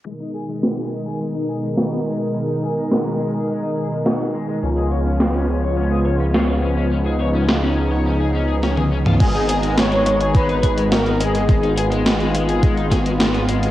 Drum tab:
CC |----------------|----------------|----------------|----------------|
HH |----------------|----------------|----------------|----------------|
SD |----o-------o---|----o-------o---|----o-------o---|----o-------o---|
T1 |----------------|----------------|----------------|-------------o--|
T2 |----------------|----------------|----------------|---------------o|
BD |----------------|----------------|----------------|----------------|

CC |x---------------|----------------|
HH |xxxxxxxxxxxxxxxx|xxxxxxxxxxxxxxxx|
SD |----o-------o---|----o-----o-o---|
T1 |----------------|----------------|
T2 |----------------|----------------|
BD |o-------o-o-----|o-------o-o-----|